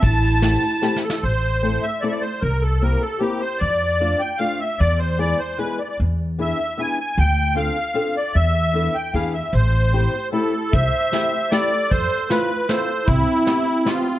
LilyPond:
<<
  \new Staff \with { instrumentName = "Accordion" } { \time 3/4 \key a \minor \tempo 4 = 152 a''2~ a''8 a'8 | c''4. e''8 d''32 e''32 d''16 c''8 | bes'8 a'8 bes'8 a'8 g'8 c''8 | d''4. g''8 f''8 e''8 |
d''8 c''8 d''8 c''8 b'8 d''32 d''32 d''16 | r4 e''4 gis''8 gis''8 | g''4 f''4. d''8 | e''4. g''8 f''8 e''8 |
c''2 a'4 | \key c \major e''2 d''4 | c''4 b'4 c''4 | e'2 f'4 | }
  \new Staff \with { instrumentName = "Clarinet" } { \time 3/4 \key a \minor e'2~ e'8 r8 | r2. | r2. | r2. |
r2. | r2. | r2. | r2. |
r2 e'4 | \key c \major c''2 a'4 | a'4 f'4 a'4 | c'2 c'4 | }
  \new Staff \with { instrumentName = "Steel-string acoustic guitar" } { \time 3/4 \key a \minor r4 <a c' e' g'>8 r8 <a c' e' g'>8 r8 | r4 <a c' e' a'>8 r8 <a c' e' a'>8 r8 | r4 <bes c' e' g'>8 r8 <bes c' e' g'>8 r8 | r4 <a c' d' f'>8 r8 <a c' d' f'>8 r8 |
r4 <gis b e' gis'>8 r8 <gis b e' gis'>8 r8 | r4 <b d' e' gis'>8 r8 <b d' e' gis'>8 r8 | r4 <c' d' f' a'>8 r8 <c' d' f' a'>8 r8 | r4 <b d' e' a'>8 r8 <b d' e' gis'>8 r8 |
r4 <a c' e' g'>8 r8 <a c' e' g'>8 r8 | \key c \major r4 <a c' e' g'>8 r8 <a c' e' g'>8 r8 | r4 <a c' e' f'>8 r8 <a c' e' f'>8 r8 | r4 <b c' e' g'>8 r8 <b c' e' g'>8 r8 | }
  \new Staff \with { instrumentName = "Upright bass" } { \clef bass \time 3/4 \key a \minor a,,2 r4 | a,,2 r4 | c,2 r4 | f,2 r4 |
e,2 r4 | e,2 r4 | d,2 r4 | e,2 e,4 |
a,,2 r4 | \key c \major c,8 r2 r8 | f,8 r2 r8 | c,8 r2 r8 | }
  \new DrumStaff \with { instrumentName = "Drums" } \drummode { \time 3/4 <bd cymr>8 cymr8 <cymr sn>4 \tuplet 3/2 { sn8 sn8 sn8 } | r4 r4 r4 | r4 r4 r4 | r4 r4 r4 |
r4 r4 r4 | r4 r4 r4 | r4 r4 r4 | r4 r4 r4 |
r4 r4 r4 | <hh bd>4 <hh sn>4 <hh sn>4 | <hh bd>4 <hh sn>4 <hh sn>4 | <hh bd>4 <hh sn>4 <hh sn>4 | }
>>